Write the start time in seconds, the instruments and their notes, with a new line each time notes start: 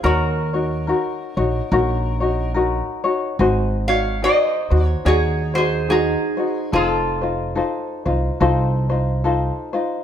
0.03 upright bass D#2, ukulele D#4 F#4 A#4 C#5, resonator guitar played with a steel bar F#4 A#4
0.53 ukulele D#4 F#4 C#5
0.87 ukulele D#4 F#4 A#4 C#5
1.37 upright bass A#1, ukulele D#4 F#4 C#5
1.72 upright bass A#1, ukulele D#4 F#4 A#4 C#5
2.20 ukulele D#4 F#4 C#5
2.54 ukulele D#4 F#4 A#4 C#5
3.04 ukulele D#4 F#4 C#5
3.39 upright bass G#1, ukulele D#4 F#4 G#4 C5
3.88 ukulele D#4 F#4, resonator guitar played with a steel bar C#5 F5
4.22 ukulele D#4 F#4 G#4 C5, resonator guitar played with a steel bar C5 D#5
4.70 upright bass D#2, ukulele D#4 F#4 C5
4.86 resonator guitar played with a steel bar C#5
5.05 upright bass D#2, ukulele D#4 F#4 G#4, resonator guitar played with a steel bar G#4 C#5
5.54 ukulele D#4 F#4 C5, resonator guitar played with a steel bar G#4 C5
5.89 ukulele D#4 F#4 G#4 C5, resonator guitar played with a steel bar D#4 G#4
6.37 ukulele D#4 F#4 C5
6.72 upright bass F1, ukulele D#4 F4 A4 C5, resonator guitar played with a steel bar F4 A4
7.22 ukulele D#4 F4 C5
7.55 ukulele D#4 F4 A4 C5
8.06 upright bass C2, ukulele D#4 F4 C5
8.40 upright bass C2, ukulele D#4 F4 A4 C5
8.90 ukulele D#4 F4 C5
9.24 ukulele D#4 F4 A4 C5
9.73 ukulele D#4 F4 C5